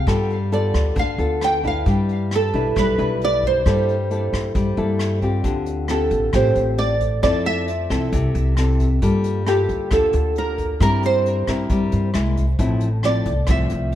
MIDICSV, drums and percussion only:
0, 0, Header, 1, 2, 480
1, 0, Start_track
1, 0, Key_signature, 0, "major"
1, 0, Tempo, 446761
1, 80, Time_signature, 4, 2, 24, 8
1, 5849, Key_signature, -1, "major"
1, 14989, End_track
2, 0, Start_track
2, 0, Title_t, "Drums"
2, 75, Note_on_c, 9, 36, 52
2, 83, Note_on_c, 9, 37, 54
2, 83, Note_on_c, 9, 42, 40
2, 183, Note_off_c, 9, 36, 0
2, 191, Note_off_c, 9, 37, 0
2, 191, Note_off_c, 9, 42, 0
2, 322, Note_on_c, 9, 42, 24
2, 430, Note_off_c, 9, 42, 0
2, 561, Note_on_c, 9, 42, 44
2, 668, Note_off_c, 9, 42, 0
2, 795, Note_on_c, 9, 36, 24
2, 799, Note_on_c, 9, 37, 61
2, 799, Note_on_c, 9, 42, 29
2, 903, Note_off_c, 9, 36, 0
2, 906, Note_off_c, 9, 37, 0
2, 906, Note_off_c, 9, 42, 0
2, 1034, Note_on_c, 9, 36, 61
2, 1037, Note_on_c, 9, 42, 47
2, 1141, Note_off_c, 9, 36, 0
2, 1144, Note_off_c, 9, 42, 0
2, 1280, Note_on_c, 9, 42, 29
2, 1387, Note_off_c, 9, 42, 0
2, 1519, Note_on_c, 9, 37, 59
2, 1519, Note_on_c, 9, 42, 48
2, 1627, Note_off_c, 9, 37, 0
2, 1627, Note_off_c, 9, 42, 0
2, 1761, Note_on_c, 9, 36, 23
2, 1764, Note_on_c, 9, 42, 29
2, 1868, Note_off_c, 9, 36, 0
2, 1872, Note_off_c, 9, 42, 0
2, 2001, Note_on_c, 9, 36, 53
2, 2002, Note_on_c, 9, 42, 43
2, 2108, Note_off_c, 9, 36, 0
2, 2109, Note_off_c, 9, 42, 0
2, 2245, Note_on_c, 9, 42, 27
2, 2352, Note_off_c, 9, 42, 0
2, 2485, Note_on_c, 9, 37, 63
2, 2485, Note_on_c, 9, 42, 48
2, 2593, Note_off_c, 9, 37, 0
2, 2593, Note_off_c, 9, 42, 0
2, 2725, Note_on_c, 9, 36, 26
2, 2729, Note_on_c, 9, 42, 28
2, 2833, Note_off_c, 9, 36, 0
2, 2837, Note_off_c, 9, 42, 0
2, 2968, Note_on_c, 9, 36, 61
2, 2972, Note_on_c, 9, 37, 64
2, 2972, Note_on_c, 9, 42, 44
2, 3076, Note_off_c, 9, 36, 0
2, 3080, Note_off_c, 9, 37, 0
2, 3080, Note_off_c, 9, 42, 0
2, 3218, Note_on_c, 9, 42, 27
2, 3325, Note_off_c, 9, 42, 0
2, 3453, Note_on_c, 9, 42, 43
2, 3561, Note_off_c, 9, 42, 0
2, 3689, Note_on_c, 9, 36, 26
2, 3693, Note_on_c, 9, 42, 25
2, 3796, Note_off_c, 9, 36, 0
2, 3800, Note_off_c, 9, 42, 0
2, 3930, Note_on_c, 9, 36, 53
2, 3932, Note_on_c, 9, 37, 55
2, 3932, Note_on_c, 9, 42, 37
2, 4038, Note_off_c, 9, 36, 0
2, 4040, Note_off_c, 9, 37, 0
2, 4040, Note_off_c, 9, 42, 0
2, 4174, Note_on_c, 9, 42, 27
2, 4282, Note_off_c, 9, 42, 0
2, 4414, Note_on_c, 9, 42, 43
2, 4522, Note_off_c, 9, 42, 0
2, 4650, Note_on_c, 9, 36, 24
2, 4660, Note_on_c, 9, 37, 65
2, 4660, Note_on_c, 9, 42, 27
2, 4758, Note_off_c, 9, 36, 0
2, 4767, Note_off_c, 9, 37, 0
2, 4767, Note_off_c, 9, 42, 0
2, 4889, Note_on_c, 9, 36, 60
2, 4890, Note_on_c, 9, 42, 44
2, 4996, Note_off_c, 9, 36, 0
2, 4997, Note_off_c, 9, 42, 0
2, 5125, Note_on_c, 9, 42, 28
2, 5232, Note_off_c, 9, 42, 0
2, 5365, Note_on_c, 9, 37, 61
2, 5365, Note_on_c, 9, 42, 48
2, 5473, Note_off_c, 9, 37, 0
2, 5473, Note_off_c, 9, 42, 0
2, 5607, Note_on_c, 9, 36, 25
2, 5608, Note_on_c, 9, 42, 30
2, 5714, Note_off_c, 9, 36, 0
2, 5715, Note_off_c, 9, 42, 0
2, 5845, Note_on_c, 9, 42, 56
2, 5846, Note_on_c, 9, 36, 58
2, 5953, Note_off_c, 9, 36, 0
2, 5953, Note_off_c, 9, 42, 0
2, 6082, Note_on_c, 9, 42, 42
2, 6189, Note_off_c, 9, 42, 0
2, 6320, Note_on_c, 9, 37, 63
2, 6320, Note_on_c, 9, 42, 47
2, 6427, Note_off_c, 9, 37, 0
2, 6427, Note_off_c, 9, 42, 0
2, 6560, Note_on_c, 9, 42, 43
2, 6564, Note_on_c, 9, 36, 26
2, 6667, Note_off_c, 9, 42, 0
2, 6672, Note_off_c, 9, 36, 0
2, 6799, Note_on_c, 9, 37, 61
2, 6799, Note_on_c, 9, 42, 57
2, 6805, Note_on_c, 9, 36, 59
2, 6907, Note_off_c, 9, 37, 0
2, 6907, Note_off_c, 9, 42, 0
2, 6912, Note_off_c, 9, 36, 0
2, 7044, Note_on_c, 9, 42, 41
2, 7152, Note_off_c, 9, 42, 0
2, 7284, Note_on_c, 9, 42, 42
2, 7392, Note_off_c, 9, 42, 0
2, 7526, Note_on_c, 9, 42, 45
2, 7528, Note_on_c, 9, 36, 25
2, 7633, Note_off_c, 9, 42, 0
2, 7636, Note_off_c, 9, 36, 0
2, 7769, Note_on_c, 9, 36, 58
2, 7769, Note_on_c, 9, 37, 59
2, 7769, Note_on_c, 9, 42, 53
2, 7876, Note_off_c, 9, 36, 0
2, 7877, Note_off_c, 9, 37, 0
2, 7877, Note_off_c, 9, 42, 0
2, 8008, Note_on_c, 9, 42, 42
2, 8115, Note_off_c, 9, 42, 0
2, 8249, Note_on_c, 9, 42, 47
2, 8357, Note_off_c, 9, 42, 0
2, 8491, Note_on_c, 9, 36, 24
2, 8493, Note_on_c, 9, 37, 62
2, 8493, Note_on_c, 9, 42, 44
2, 8599, Note_off_c, 9, 36, 0
2, 8600, Note_off_c, 9, 37, 0
2, 8600, Note_off_c, 9, 42, 0
2, 8731, Note_on_c, 9, 42, 63
2, 8733, Note_on_c, 9, 36, 60
2, 8838, Note_off_c, 9, 42, 0
2, 8840, Note_off_c, 9, 36, 0
2, 8971, Note_on_c, 9, 42, 48
2, 9078, Note_off_c, 9, 42, 0
2, 9206, Note_on_c, 9, 37, 65
2, 9206, Note_on_c, 9, 42, 49
2, 9313, Note_off_c, 9, 37, 0
2, 9313, Note_off_c, 9, 42, 0
2, 9452, Note_on_c, 9, 36, 23
2, 9452, Note_on_c, 9, 42, 47
2, 9559, Note_off_c, 9, 36, 0
2, 9559, Note_off_c, 9, 42, 0
2, 9692, Note_on_c, 9, 42, 55
2, 9693, Note_on_c, 9, 36, 55
2, 9799, Note_off_c, 9, 42, 0
2, 9800, Note_off_c, 9, 36, 0
2, 9927, Note_on_c, 9, 42, 47
2, 10034, Note_off_c, 9, 42, 0
2, 10170, Note_on_c, 9, 37, 66
2, 10170, Note_on_c, 9, 42, 47
2, 10277, Note_off_c, 9, 37, 0
2, 10277, Note_off_c, 9, 42, 0
2, 10411, Note_on_c, 9, 36, 24
2, 10413, Note_on_c, 9, 42, 47
2, 10519, Note_off_c, 9, 36, 0
2, 10520, Note_off_c, 9, 42, 0
2, 10644, Note_on_c, 9, 37, 58
2, 10644, Note_on_c, 9, 42, 60
2, 10650, Note_on_c, 9, 36, 66
2, 10751, Note_off_c, 9, 37, 0
2, 10751, Note_off_c, 9, 42, 0
2, 10757, Note_off_c, 9, 36, 0
2, 10882, Note_on_c, 9, 42, 44
2, 10989, Note_off_c, 9, 42, 0
2, 11128, Note_on_c, 9, 42, 44
2, 11235, Note_off_c, 9, 42, 0
2, 11369, Note_on_c, 9, 42, 43
2, 11370, Note_on_c, 9, 36, 26
2, 11477, Note_off_c, 9, 36, 0
2, 11477, Note_off_c, 9, 42, 0
2, 11610, Note_on_c, 9, 36, 61
2, 11611, Note_on_c, 9, 37, 58
2, 11611, Note_on_c, 9, 42, 54
2, 11718, Note_off_c, 9, 36, 0
2, 11719, Note_off_c, 9, 37, 0
2, 11719, Note_off_c, 9, 42, 0
2, 11847, Note_on_c, 9, 42, 41
2, 11955, Note_off_c, 9, 42, 0
2, 12095, Note_on_c, 9, 42, 43
2, 12202, Note_off_c, 9, 42, 0
2, 12328, Note_on_c, 9, 36, 24
2, 12328, Note_on_c, 9, 37, 59
2, 12328, Note_on_c, 9, 42, 42
2, 12436, Note_off_c, 9, 36, 0
2, 12436, Note_off_c, 9, 37, 0
2, 12436, Note_off_c, 9, 42, 0
2, 12565, Note_on_c, 9, 42, 56
2, 12567, Note_on_c, 9, 36, 58
2, 12673, Note_off_c, 9, 42, 0
2, 12675, Note_off_c, 9, 36, 0
2, 12804, Note_on_c, 9, 42, 42
2, 12912, Note_off_c, 9, 42, 0
2, 13041, Note_on_c, 9, 37, 60
2, 13041, Note_on_c, 9, 42, 46
2, 13148, Note_off_c, 9, 37, 0
2, 13148, Note_off_c, 9, 42, 0
2, 13287, Note_on_c, 9, 36, 25
2, 13292, Note_on_c, 9, 42, 46
2, 13394, Note_off_c, 9, 36, 0
2, 13399, Note_off_c, 9, 42, 0
2, 13524, Note_on_c, 9, 42, 59
2, 13525, Note_on_c, 9, 36, 61
2, 13632, Note_off_c, 9, 42, 0
2, 13633, Note_off_c, 9, 36, 0
2, 13758, Note_on_c, 9, 42, 47
2, 13866, Note_off_c, 9, 42, 0
2, 14001, Note_on_c, 9, 37, 60
2, 14001, Note_on_c, 9, 42, 47
2, 14108, Note_off_c, 9, 37, 0
2, 14108, Note_off_c, 9, 42, 0
2, 14239, Note_on_c, 9, 42, 46
2, 14243, Note_on_c, 9, 36, 24
2, 14347, Note_off_c, 9, 42, 0
2, 14350, Note_off_c, 9, 36, 0
2, 14469, Note_on_c, 9, 37, 64
2, 14469, Note_on_c, 9, 42, 64
2, 14481, Note_on_c, 9, 36, 61
2, 14577, Note_off_c, 9, 37, 0
2, 14577, Note_off_c, 9, 42, 0
2, 14589, Note_off_c, 9, 36, 0
2, 14716, Note_on_c, 9, 42, 47
2, 14823, Note_off_c, 9, 42, 0
2, 14989, End_track
0, 0, End_of_file